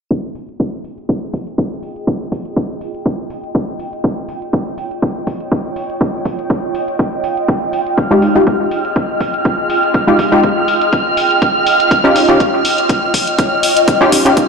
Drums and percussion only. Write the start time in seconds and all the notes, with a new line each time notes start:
0.11 kick, closed hi-hat
0.35 open hi-hat
0.49 closed hi-hat
0.60 kick, closed hi-hat
0.84 open hi-hat
0.98 closed hi-hat
1.09 kick, closed hi-hat
1.34 kick, open hi-hat
1.47 closed hi-hat
1.58 kick, closed hi-hat
1.83 open hi-hat
1.96 closed hi-hat
2.07 kick, closed hi-hat
2.32 kick, open hi-hat
2.45 closed hi-hat
2.56 kick, closed hi-hat
2.81 open hi-hat
2.95 closed hi-hat
3.06 kick, closed hi-hat
3.30 open hi-hat
3.44 closed hi-hat
3.55 kick, closed hi-hat
3.79 open hi-hat
3.93 closed hi-hat
4.04 kick, closed hi-hat
4.29 open hi-hat
4.42 closed hi-hat
4.53 kick, closed hi-hat
4.78 open hi-hat
4.91 closed hi-hat
5.02 kick, closed hi-hat
5.27 kick, open hi-hat
5.40 closed hi-hat
5.52 kick, closed hi-hat
5.76 open hi-hat
5.90 closed hi-hat
6.01 kick, closed hi-hat
6.25 kick, open hi-hat
6.39 closed hi-hat
6.50 kick, closed hi-hat
6.75 open hi-hat
6.88 closed hi-hat
6.99 kick, closed hi-hat
7.24 open hi-hat
7.37 closed hi-hat
7.48 kick, closed hi-hat
7.73 open hi-hat
7.87 closed hi-hat
7.98 kick, closed hi-hat
8.22 open hi-hat
8.36 closed hi-hat
8.47 kick, closed hi-hat
8.71 open hi-hat
8.85 closed hi-hat
8.96 kick, closed hi-hat
9.21 kick, open hi-hat
9.34 closed hi-hat
9.45 kick, closed hi-hat
9.70 open hi-hat
9.83 closed hi-hat
9.94 kick, closed hi-hat
10.19 kick, open hi-hat
10.32 closed hi-hat
10.43 kick, closed hi-hat
10.68 open hi-hat
10.81 closed hi-hat
10.93 kick, closed hi-hat
11.17 open hi-hat
11.31 closed hi-hat
11.42 kick, closed hi-hat
11.66 open hi-hat
11.80 closed hi-hat
11.91 kick, closed hi-hat
12.16 open hi-hat
12.29 closed hi-hat
12.40 kick, closed hi-hat
12.65 open hi-hat
12.78 closed hi-hat
12.89 kick, closed hi-hat
13.14 kick, open hi-hat
13.27 closed hi-hat
13.39 kick, closed hi-hat
13.63 open hi-hat
13.77 closed hi-hat
13.88 kick, closed hi-hat
14.12 kick, open hi-hat
14.26 closed hi-hat
14.37 kick, closed hi-hat